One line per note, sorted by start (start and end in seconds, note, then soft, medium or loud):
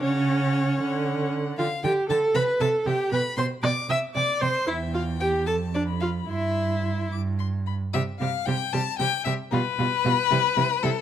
0.03 0.80 C#3 medium
0.03 1.30 C#4 medium
0.03 1.30 C#5 medium
0.03 0.79 F#5 medium
0.81 1.57 D3 medium
0.81 1.56 F#5 medium
1.58 1.67 D3 medium
1.58 1.66 F4 medium
1.58 1.82 F5 medium
1.58 1.67 G5 medium
1.84 1.92 D3 medium
1.84 2.08 G4 medium
1.84 1.92 G5 medium
2.09 2.18 D3 medium
2.09 2.37 A4 medium
2.09 2.17 G5 medium
2.09 2.18 A5 medium
2.35 2.43 C3 medium
2.35 2.62 B4 medium
2.35 2.43 E5 medium
2.35 2.43 B5 medium
2.60 2.68 C3 medium
2.60 2.88 A4 medium
2.60 2.68 E5 medium
2.60 2.68 A5 medium
2.86 2.94 C3 medium
2.86 3.12 G4 medium
2.86 2.95 E5 medium
2.86 3.11 G5 medium
3.12 3.20 B2 medium
3.12 3.20 B4 medium
3.12 3.21 G5 medium
3.12 3.36 B5 medium
3.37 3.45 B2 medium
3.37 3.46 C5 medium
3.37 3.47 G5 soft
3.37 3.45 C6 medium
3.63 3.72 B2 medium
3.63 3.71 D5 medium
3.63 3.73 G5 medium
3.63 3.89 D6 medium
3.89 3.97 C3 medium
3.89 3.98 E5 loud
3.89 3.98 G5 soft
3.89 3.98 E6 medium
4.15 4.24 C3 medium
4.15 4.43 D5 medium
4.15 4.24 G5 medium
4.15 4.41 D6 medium
4.41 4.50 C3 medium
4.41 4.67 C5 medium
4.41 4.50 G5 medium
4.41 4.69 C6 medium
4.67 5.49 E2 medium
4.67 4.75 E4 medium
4.67 4.94 E5 medium
4.67 5.49 G5 medium
4.94 5.02 F4 medium
4.94 5.02 F5 medium
5.20 5.47 G4 medium
5.20 5.29 G5 medium
5.47 6.28 F2 medium
5.47 5.55 A4 medium
5.47 5.55 A5 medium
5.47 5.87 A5 medium
5.74 5.83 D4 medium
5.74 5.82 D5 medium
5.88 6.31 B5 soft
6.00 6.09 F4 medium
6.00 6.08 F5 medium
6.28 7.10 G2 medium
6.28 7.09 E4 medium
6.28 7.10 E5 medium
6.28 7.11 C6 medium
7.12 7.73 G2 medium
7.12 7.20 D6 medium
7.39 7.47 C6 medium
7.66 7.74 B5 medium
7.93 8.02 C3 medium
7.93 8.02 G3 medium
7.93 8.03 G4 medium
7.93 8.01 E5 medium
8.20 8.28 C3 medium
8.20 8.29 G3 medium
8.20 8.29 G4 medium
8.20 8.47 F5 medium
8.45 8.55 C3 medium
8.45 8.55 G3 medium
8.45 8.56 G4 medium
8.45 8.74 G5 loud
8.73 8.82 C3 medium
8.73 8.81 G3 medium
8.73 8.81 G4 medium
8.73 8.98 A5 loud
8.99 9.08 C3 medium
8.99 9.07 G3 medium
8.99 9.08 G4 medium
8.99 9.24 G5 loud
9.25 9.34 C3 medium
9.25 9.34 G3 medium
9.25 9.34 G4 medium
9.25 9.33 E5 loud
9.51 9.60 B2 medium
9.51 9.60 G3 medium
9.51 9.61 F4 medium
9.51 10.84 B4 loud
9.79 9.87 B2 medium
9.79 9.87 G3 medium
9.79 9.87 F4 medium
10.05 10.13 B2 medium
10.05 10.13 G3 medium
10.05 10.14 F4 medium
10.31 10.39 C3 medium
10.31 10.39 G3 medium
10.31 10.39 E4 medium
10.56 10.65 C3 medium
10.56 10.64 G3 medium
10.56 10.66 E4 medium
10.83 10.92 C3 medium
10.83 10.91 G3 medium
10.83 10.93 E4 medium
10.83 11.01 A4 medium